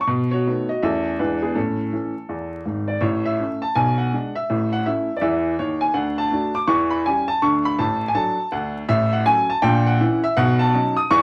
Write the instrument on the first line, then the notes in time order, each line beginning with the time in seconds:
grand piano
0.01 C#6
0.07 B2
0.31 F#4 C#5
0.47 D#3 A3 B3
0.69 F#4 D#5
0.82 E2 E3 A3 C#4 A4 E5
1.19 E2 E3 G#3 D4 B4
1.42 B3 G#4
1.55 A2 C#4 A4
1.93 E3 A3 C#4
2.29 E2
2.65 G#1 G#2
2.88 D5
3.01 A1 A2 C#5
3.25 E5
3.40 A3 C#4
3.62 A5
3.75 B1 B2 G#5
3.98 F#5
4.13 G#3 D4
4.35 E5
4.50 A1 A2
4.73 F#5
4.86 A3 C#4 E4 E5
5.17 D5
5.21 E2 E3 E5
5.59 D#2 D#3 C#5
5.81 G#5
5.94 D2 D3 F#5
6.18 A5
6.32 A3 D4 F#4
6.55 D6
6.67 E2 E3 C#6
6.90 B5
7.06 G3 C#4 G4 G#5
7.28 A5
7.42 D2 D3 C#6
7.65 B5
7.79 A1 A2 A5
8.08 G#5
8.15 F#3 D4 A4 A5
8.52 D2 D3 F#5
8.88 A1 A2 E5
9.13 F#5
9.26 F#3 C#4 A4 G#5
9.50 A5
9.62 A#1 A#2 G5
9.87 F#5
10.01 E3 C#4 E4
10.24 E5
10.37 B1 B2 F#5
10.59 A5
10.73 F#3 C#4 D#4
10.97 D#6
11.11 E2 E3 C#6